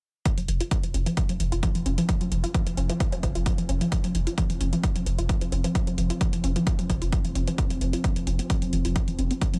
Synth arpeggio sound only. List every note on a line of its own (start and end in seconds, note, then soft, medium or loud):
0.25 0.32 F3 medium
0.38 0.41 F#3 medium
0.48 0.55 F3 medium
0.60 0.67 F4 medium
0.71 0.78 F3 medium
0.83 0.93 F3 medium
0.94 0.98 C#4 medium
1.06 1.13 F3 loud
1.17 1.24 F3 medium
1.29 1.33 F#3 medium
1.40 1.47 F3 medium
1.52 1.58 F4 medium
1.63 1.70 F3 medium
1.75 1.84 F3 medium
1.86 1.90 C#4 medium
1.98 2.04 F3 loud
2.09 2.16 F3 medium
2.21 2.25 F#3 medium
2.32 2.39 F3 medium
2.44 2.50 F4 medium
2.54 2.61 F3 medium
2.67 2.76 F3 medium
2.77 2.82 C#4 medium
2.90 2.96 F3 loud
3.00 3.07 F3 medium
3.12 3.16 F#3 medium
3.23 3.30 F3 medium
3.35 3.42 F4 medium
3.46 3.53 F3 medium
3.58 3.68 F3 medium
3.69 3.73 C#4 medium
3.81 3.87 F3 loud
3.92 3.99 F3 medium
4.04 4.08 F#3 medium
4.15 4.22 F3 medium
4.27 4.33 F4 medium
4.38 4.45 F3 medium
4.50 4.59 F3 medium
4.61 4.65 C#4 medium
4.73 4.79 F3 loud
4.83 4.90 F3 medium
4.96 4.99 F#3 medium
5.06 5.13 F3 medium
5.18 5.25 F4 medium
5.29 5.36 F3 medium
5.41 5.51 F3 medium
5.52 5.56 C#4 medium
5.64 5.71 F3 loud
5.75 5.82 F3 medium
5.87 5.91 F#3 medium
5.98 6.05 F3 medium
6.10 6.16 F4 medium
6.21 6.28 F3 medium
6.33 6.42 F3 medium
6.44 6.48 C#4 medium
6.56 6.62 F3 loud
6.67 6.74 F3 medium
6.79 6.83 F#3 medium
6.90 6.97 F3 medium
7.02 7.08 F4 medium
7.12 7.19 F3 medium
7.25 7.34 F3 medium
7.35 7.40 C#4 medium
7.47 7.54 F3 loud
7.58 7.65 F3 medium
7.70 7.74 F#3 medium
7.81 7.88 F3 medium
7.93 8.00 F4 medium
8.04 8.11 F3 medium
8.16 8.26 F3 medium
8.27 8.31 C#4 medium
8.39 8.45 C4 medium
8.50 8.57 F3 medium
8.62 8.66 F#3 medium
8.73 8.80 F3 medium
8.85 8.91 F4 medium
8.96 9.03 F3 medium
9.08 9.17 F3 medium
9.19 9.23 C#4 medium
9.31 9.37 C4 medium
9.42 9.49 F3 medium
9.54 9.57 F#3 medium